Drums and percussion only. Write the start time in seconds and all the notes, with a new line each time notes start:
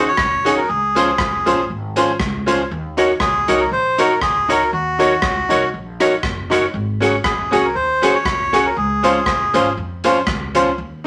0.17 kick, cross-stick
0.46 closed hi-hat
0.96 closed hi-hat
1.18 kick, cross-stick
1.47 closed hi-hat
1.96 closed hi-hat
2.20 kick, cross-stick
2.48 closed hi-hat
2.98 closed hi-hat
3.20 kick, cross-stick
3.48 closed hi-hat
3.98 closed hi-hat
4.21 kick, cross-stick
4.50 closed hi-hat
5.00 closed hi-hat
5.22 kick, cross-stick
5.50 closed hi-hat
6.00 cross-stick, closed hi-hat
6.23 kick, cross-stick
6.51 cross-stick, closed hi-hat
7.02 closed hi-hat
7.24 kick, cross-stick
7.53 closed hi-hat
8.03 cross-stick, closed hi-hat
8.25 kick, cross-stick
8.54 closed hi-hat
9.04 closed hi-hat
9.26 kick, cross-stick
9.54 closed hi-hat
10.04 closed hi-hat
10.27 kick, cross-stick
10.55 closed hi-hat